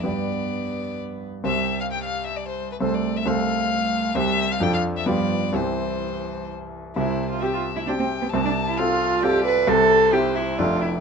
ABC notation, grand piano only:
X:1
M:3/4
L:1/8
Q:1/4=131
K:C
V:1 name="Grand piano"
[G,,B,Gd]6 | [C,,CGc]6 | [C,,CAc]2 [C,,CAc]4 | [C,,CGc]2 [F,,DFA]2 [G,,B,FG]2 |
[C,,CEG]6 | [C,,C,]2 [CG]2 [CG]2 | [C,,C,]2 [CFA]2 [CFA]2 | [C,,C,]2 [CEG]2 [F,,,F,,A,DA]2 |]